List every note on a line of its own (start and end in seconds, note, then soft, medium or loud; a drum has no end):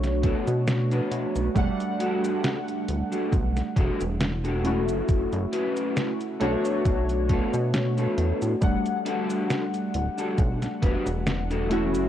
0.00 0.35 B1 loud
0.00 1.47 A3 medium
0.00 1.48 D4 medium
0.00 1.49 F#4 loud
0.00 1.48 C#5 medium
0.00 muted clean electric guitar stroke soft
0.00 snare soft
0.00 closed hi-hat soft
0.00 cabasa soft
0.23 0.47 B3 loud
0.23 0.47 D4 loud
0.23 0.48 F#4 loud
0.23 0.48 A4 loud
0.23 kick loud
0.23 closed hi-hat medium
0.47 1.01 B2 loud
0.47 closed hi-hat soft
0.47 cabasa medium
0.67 muted clean electric guitar stroke soft
0.67 snare loud
0.67 closed hi-hat medium
0.67 cabasa soft
0.92 1.46 B3 medium
0.92 1.46 D4 medium
0.92 1.46 F#4 medium
0.92 1.46 B4 loud
0.92 closed hi-hat soft
0.92 cabasa soft
1.12 1.26 B2 medium
1.12 closed hi-hat medium
1.36 1.49 B1 medium
1.36 closed hi-hat soft
1.36 cabasa medium
1.54 1.71 E1 loud
1.54 4.56 G3 medium
1.54 4.57 A3 medium
1.54 4.57 D4 medium
1.54 4.58 F#5 loud
1.54 kick loud
1.54 closed hi-hat medium
1.54 cabasa soft
1.80 closed hi-hat soft
1.80 cabasa soft
1.99 2.56 D4 loud
1.99 2.56 F#4 loud
1.99 2.56 G4 loud
1.99 2.56 A4 loud
1.99 closed hi-hat medium
2.24 closed hi-hat soft
2.24 cabasa medium
2.44 snare loud
2.44 closed hi-hat medium
2.44 cabasa soft
2.68 closed hi-hat soft
2.68 cabasa soft
2.88 3.03 D1 loud
2.88 closed hi-hat medium
3.12 3.32 D4 medium
3.12 3.32 F#4 medium
3.12 3.32 G4 medium
3.12 3.33 A4 medium
3.12 closed hi-hat soft
3.12 cabasa medium
3.32 3.62 B1 loud
3.32 kick loud
3.32 closed hi-hat medium
3.32 cabasa soft
3.56 muted clean electric guitar stroke soft
3.56 snare soft
3.56 closed hi-hat soft
3.56 cabasa soft
3.76 3.91 E1 loud
3.76 4.00 D4 loud
3.76 4.00 F#4 loud
3.76 4.01 G4 loud
3.76 4.01 A4 loud
3.76 kick loud
3.76 closed hi-hat medium
4.00 4.90 E1 loud
4.00 closed hi-hat soft
4.00 cabasa medium
4.20 muted clean electric guitar stroke soft
4.20 snare loud
4.20 closed hi-hat medium
4.20 cabasa soft
4.44 4.64 D4 medium
4.44 4.64 F#4 medium
4.44 4.65 G4 medium
4.44 4.64 A4 loud
4.44 closed hi-hat soft
4.44 cabasa soft
4.63 6.32 A3 medium
4.63 6.33 C#4 medium
4.63 5.37 C#4 medium
4.63 5.37 E4 medium
4.63 6.33 E4 medium
4.63 5.37 F#4 medium
4.63 6.34 F#4 medium
4.63 5.37 A4 loud
4.63 closed hi-hat medium
4.89 5.02 F#1 medium
4.89 closed hi-hat soft
4.89 cabasa medium
5.09 5.28 F#1 soft
5.09 kick loud
5.09 closed hi-hat medium
5.09 cabasa soft
5.33 5.46 F#1 medium
5.33 closed hi-hat soft
5.33 cabasa soft
5.52 6.09 C#4 loud
5.52 6.09 E4 loud
5.52 6.09 F#4 loud
5.52 6.09 B4 loud
5.52 closed hi-hat medium
5.77 closed hi-hat soft
5.77 cabasa medium
5.97 snare loud
5.97 closed hi-hat medium
5.97 cabasa soft
6.21 closed hi-hat soft
6.21 cabasa soft
6.40 6.56 B1 loud
6.40 8.53 A3 loud
6.40 6.95 B3 medium
6.40 6.95 D4 medium
6.40 8.54 D4 medium
6.40 6.95 F#4 medium
6.40 8.55 F#4 loud
6.40 6.95 A4 loud
6.40 8.54 C#5 medium
6.40 closed hi-hat medium
6.65 closed hi-hat soft
6.65 cabasa medium
6.85 7.41 B1 loud
6.85 kick loud
6.85 closed hi-hat medium
6.85 cabasa soft
7.09 muted clean electric guitar stroke soft
7.09 closed hi-hat soft
7.09 cabasa soft
7.29 7.53 B3 loud
7.29 7.54 D4 loud
7.29 7.54 F#4 loud
7.29 7.54 A4 loud
7.29 kick loud
7.29 closed hi-hat medium
7.53 8.07 B2 loud
7.53 closed hi-hat soft
7.53 cabasa medium
7.74 muted clean electric guitar stroke soft
7.74 snare loud
7.74 closed hi-hat medium
7.74 cabasa soft
7.97 8.52 B3 medium
7.97 8.52 D4 medium
7.97 8.52 F#4 medium
7.97 8.52 A4 medium
7.97 closed hi-hat soft
7.97 cabasa soft
8.18 8.32 E2 medium
8.18 closed hi-hat medium
8.42 8.55 A2 medium
8.42 closed hi-hat soft
8.42 cabasa medium
8.61 8.77 E1 loud
8.61 11.62 G3 medium
8.61 11.63 A3 medium
8.61 11.63 D4 medium
8.61 11.63 F#5 loud
8.61 kick loud
8.61 closed hi-hat medium
8.61 cabasa soft
8.86 closed hi-hat soft
8.86 cabasa soft
9.05 9.62 D4 loud
9.05 9.62 F#4 loud
9.05 9.62 G4 loud
9.05 9.62 A4 loud
9.05 closed hi-hat medium
9.30 closed hi-hat soft
9.30 cabasa medium
9.50 snare loud
9.50 closed hi-hat medium
9.50 cabasa soft
9.74 closed hi-hat soft
9.74 cabasa soft
9.94 10.09 D1 loud
9.94 closed hi-hat medium
10.18 10.38 D4 medium
10.18 10.38 F#4 medium
10.18 10.39 G4 medium
10.18 10.39 A4 medium
10.18 closed hi-hat soft
10.18 cabasa medium
10.38 10.68 B1 loud
10.38 kick loud
10.38 closed hi-hat medium
10.38 cabasa soft
10.62 muted clean electric guitar stroke soft
10.62 snare soft
10.62 closed hi-hat soft
10.62 cabasa soft
10.82 10.97 E1 loud
10.82 11.06 D4 loud
10.82 11.06 F#4 loud
10.82 11.07 G4 loud
10.82 11.07 B4 loud
10.82 kick loud
10.82 closed hi-hat loud
11.06 11.96 E1 loud
11.06 closed hi-hat soft
11.06 cabasa medium
11.27 muted clean electric guitar stroke soft
11.27 snare loud
11.27 closed hi-hat medium
11.27 cabasa soft
11.50 11.70 D4 medium
11.50 11.70 F#4 medium
11.50 11.71 G4 medium
11.50 11.71 A4 loud
11.50 closed hi-hat soft
11.50 cabasa soft
11.69 12.09 A3 medium
11.69 12.09 C#4 medium
11.69 12.09 E4 medium
11.69 12.09 F#4 medium
11.69 12.09 A4 loud
11.69 closed hi-hat medium
11.95 12.08 F#1 medium
11.95 closed hi-hat soft
11.95 cabasa medium